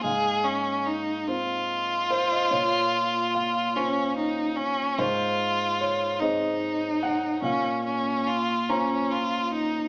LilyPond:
<<
  \new Staff \with { instrumentName = "Grand piano" } { \time 6/8 \key bes \minor \tempo 4. = 49 << { f''4. r4 c''16 ees''16 | des''4 f''2 | c''4 des''8 ees''4 ges''8 | f''4. bes''4. | } \\ { aes,4. <c' f' c''>4. | bes,4. <des' f' c''>4. | aes,4. <c' aes' c''>4. | bes,4. <des' f' c''>4. | } >> }
  \new Staff \with { instrumentName = "Violin" } { \time 6/8 \key bes \minor aes'8 des'8 ees'8 f'4.~ | f'4. des'8 ees'8 des'8 | f'4. ees'4. | des'8 des'8 f'8 des'8 f'8 ees'8 | }
>>